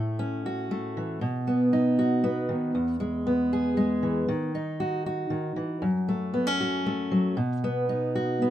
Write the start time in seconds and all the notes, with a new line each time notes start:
Already playing: A2 A3 E4
0.19 C#4
0.46 F#4
0.71 A3
0.97 E3
1.21 B2
1.47 B3
1.73 D#4
1.99 F#4
2.24 B3
2.49 D#3
2.75 E2
3.00 G#3
3.27 B3
3.53 G#4
3.77 G#3
4.03 E3
4.28 D#3
4.55 D#4
4.80 F#4
5.06 F#4
5.30 D#3
5.56 E3
5.82 F#2
6.08 A3
6.34 B3
6.47 C#4
6.61 F#4
6.86 A3
7.11 F#3
7.37 B2
7.64 B3
7.89 D#4
8.15 F#4
8.42 B3